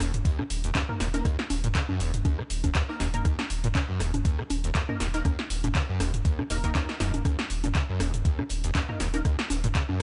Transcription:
0.00 D#1 D#2, cross-stick, snare, closed hi-hat, open hi-hat, high conga, shaker
0.14 closed hi-hat, mid tom, shaker
0.25 D#2, kick, closed hi-hat, shaker
0.39 D#3, cross-stick, high conga
0.50 D#1, closed hi-hat, open hi-hat, shaker
0.64 D#2, closed hi-hat, shaker
0.75 D#2, kick, snare, clap, closed hi-hat, high conga, shaker
0.89 A#3 D#4 A#4, mid tom
1.00 D#1 D#2, snare, closed hi-hat, open hi-hat, shaker
1.14 A#3 D#4 A#4, snare, closed hi-hat, high conga, shaker
1.25 D#2, kick, cross-stick, closed hi-hat, shaker
1.39 snare
1.49 D#1, snare, closed hi-hat, open hi-hat, high conga, shaker
1.64 A#2, closed hi-hat, mid tom, shaker
1.75 C#3, kick, snare, clap, closed hi-hat, shaker
1.89 F#2, high conga
2.00 D#1 D#2, closed hi-hat, open hi-hat, shaker
2.13 closed hi-hat, mid tom, shaker
2.25 D#2, kick, closed hi-hat, high conga, shaker
2.39 D#3, cross-stick
2.50 D#1, closed hi-hat, open hi-hat, shaker
2.64 D#2, kick, closed hi-hat, high conga, shaker
2.75 D#2, kick, snare, clap, closed hi-hat, shaker
2.89 A#3 D#4 A#4, snare
3.00 D#1 D#2, snare, closed hi-hat, open hi-hat, high conga, shaker
3.13 A#3 D#4 A#4, closed hi-hat, mid tom, shaker
3.25 D#2, kick, cross-stick, closed hi-hat, shaker
3.39 snare, high conga
3.49 D#1, closed hi-hat, open hi-hat, shaker
3.64 A#2, closed hi-hat, mid tom, shaker
3.75 C#3, kick, snare, clap, closed hi-hat, high conga, shaker
3.89 F#2
4.00 D#1 D#2, cross-stick, snare, closed hi-hat, open hi-hat, shaker
4.14 closed hi-hat, mid tom, high conga, shaker
4.25 D#2, kick, closed hi-hat, shaker
4.39 D#3, cross-stick
4.49 D#1, closed hi-hat, open hi-hat, high conga, shaker
4.64 D#2, closed hi-hat, shaker
4.75 D#2, kick, snare, clap, closed hi-hat, shaker
4.89 A#3 D#4 A#4, mid tom, high conga
5.00 D#1 D#2, snare, closed hi-hat, open hi-hat, shaker
5.13 A#3 D#4 A#4, snare, closed hi-hat, shaker
5.25 D#2, kick, cross-stick, closed hi-hat, high conga, shaker
5.39 snare
5.50 D#1, snare, closed hi-hat, open hi-hat, shaker
5.64 A#2, closed hi-hat, mid tom, high conga, shaker
5.75 C#3, kick, snare, clap, closed hi-hat, shaker
5.89 F#2
6.00 D#1 D#2, cross-stick, snare, closed hi-hat, open hi-hat, high conga, shaker
6.13 closed hi-hat, mid tom, shaker
6.25 D#2, kick, closed hi-hat, shaker
6.39 D#3, cross-stick, high conga
6.50 D#1 D#2 A#3 D#4 A#4, closed hi-hat, open hi-hat, shaker
6.64 D#3 A#3 D#4 A#4, kick, closed hi-hat, shaker
6.75 D#2, kick, snare, clap, closed hi-hat, high conga, shaker
6.88 snare
7.00 D#1 F#2 A#3 D#4 A#4, snare, closed hi-hat, open hi-hat, shaker
7.13 closed hi-hat, mid tom, high conga, shaker
7.25 D#2, kick, cross-stick, closed hi-hat, high conga, shaker
7.39 snare
7.50 D#1, closed hi-hat, open hi-hat, shaker
7.64 A#2, closed hi-hat, mid tom, high conga, shaker
7.74 C#3, kick, snare, clap, closed hi-hat, shaker
7.89 F#2
8.00 D#1 D#2, cross-stick, snare, closed hi-hat, open hi-hat, high conga, shaker
8.14 closed hi-hat, mid tom, shaker
8.25 D#2, kick, closed hi-hat, shaker
8.39 D#3, cross-stick, high conga
8.49 D#1, closed hi-hat, open hi-hat, shaker
8.64 D#2, closed hi-hat, shaker
8.75 D#2, kick, snare, clap, closed hi-hat, high conga, shaker
8.89 A#3 D#4 A#4, mid tom
9.00 D#1 D#2, snare, closed hi-hat, open hi-hat, shaker
9.14 A#3 D#4 A#4, snare, closed hi-hat, high conga, shaker
9.25 D#2, kick, cross-stick, closed hi-hat, shaker
9.39 snare
9.50 D#1, snare, closed hi-hat, open hi-hat, high conga, shaker
9.64 A#2, closed hi-hat, mid tom, shaker
9.75 C#3, kick, snare, clap, closed hi-hat, shaker
9.89 F#2, high conga

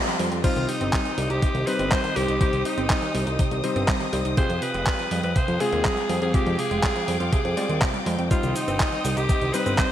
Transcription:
Already playing: G3 C4 F4 D5 F5 G5 C6
0.07 F3, closed hi-hat
0.19 F2 G3, open hi-hat
0.32 F2 C4, closed hi-hat
0.44 C3 G3 C4 D#4 F4 G4 C5 D#5 D#6, kick, closed hi-hat, crash
0.56 C2 D#3, closed hi-hat
0.69 C3 D#4, open hi-hat
0.81 G1 C4, closed hi-hat
0.93 G3, kick, clap, closed hi-hat
1.05 D#3, closed hi-hat
1.18 C2 G3, open hi-hat
1.30 C2 D#4 G4, closed hi-hat
1.42 C3, kick, closed hi-hat
1.55 C2 D#3, closed hi-hat
1.67 C3 G3 C4 D#4 B4 C5, open hi-hat
1.79 G1 C4, closed hi-hat
1.92 G3 C5, kick, clap, closed hi-hat
2.04 D#3, closed hi-hat
2.16 C2 G3 C4 D#4 G4 C5, open hi-hat
2.28 C2 D#4, closed hi-hat
2.41 C3 G3 C4 D#4 G4 C5, kick, closed hi-hat
2.53 C2 D#3, closed hi-hat
2.65 C3 D#4, open hi-hat
2.78 G1 C4, closed hi-hat
2.90 G3, kick, clap, closed hi-hat
3.02 D#3, closed hi-hat
3.15 C2 G3, open hi-hat
3.27 C2 D#4, closed hi-hat
3.39 C3, kick, closed hi-hat
3.51 C2 D#3, closed hi-hat
3.64 C3 G3 C4 D#4 C5, open hi-hat
3.76 G1 C4, closed hi-hat
3.88 G3, kick, clap, closed hi-hat
4.01 D#3, closed hi-hat
4.13 C2 G3 C4 D#4 C5, open hi-hat
4.25 C2 D#4, closed hi-hat
4.37 C3 C4 F4 G4 G#4 C5 F5 G5, kick, closed hi-hat
4.50 F2 F3, closed hi-hat
4.62 C3 B4, open hi-hat
4.74 F1 G#3, closed hi-hat
4.87 G3, kick, clap, closed hi-hat
4.99 F3, closed hi-hat
5.11 F2 G3, open hi-hat
5.23 F2 C4 B4, closed hi-hat
5.36 C3 C5, kick, closed hi-hat
5.48 F2 F3, closed hi-hat
5.60 C3 G#3 C4 F4 G#4, open hi-hat
5.73 D#2 G#3, closed hi-hat
5.85 G3, kick, clap, closed hi-hat
5.97 F3, closed hi-hat
6.09 F2 G3 C4 F4 G#4, open hi-hat
6.22 F2 C4 G#4, closed hi-hat
6.34 C3 G#3 C4 F4 G4 G#4 D6, kick, closed hi-hat
6.46 F2 F3, closed hi-hat
6.59 C3 G#4, open hi-hat
6.71 F1 G#3, closed hi-hat
6.83 G3, kick, clap, closed hi-hat
6.96 F3, closed hi-hat
7.08 F2 G3, open hi-hat
7.20 F2 C4 F4, closed hi-hat
7.32 C3 G#4, kick, closed hi-hat
7.45 F2 F3, closed hi-hat
7.57 G3 G#3 C4 F4 D5, open hi-hat
7.69 D#2 G#3, closed hi-hat
7.82 C3, kick, clap, closed hi-hat
7.94 G3, closed hi-hat
8.06 F2 G#3, open hi-hat
8.19 F2 C4, closed hi-hat
8.31 C3 G3 C4 D#4 F4 C5 D#5 D#6, kick, closed hi-hat, cabasa
8.43 C2 D#3, closed hi-hat, cabasa
8.55 C3 D#4, open hi-hat, cabasa
8.68 G1 C4, closed hi-hat, cabasa
8.80 G3, kick, clap, closed hi-hat, cabasa
8.92 D#3, closed hi-hat
9.05 C2 G3, open hi-hat, cabasa
9.17 C2 D#4 G4, closed hi-hat, cabasa
9.29 C3, kick, closed hi-hat, cabasa
9.42 C2 D#3, closed hi-hat
9.54 C3 G3 C4 D#4 B4 C5, open hi-hat, cabasa
9.66 G1 C4, closed hi-hat, cabasa
9.78 G3 C5, kick, clap, closed hi-hat, cabasa

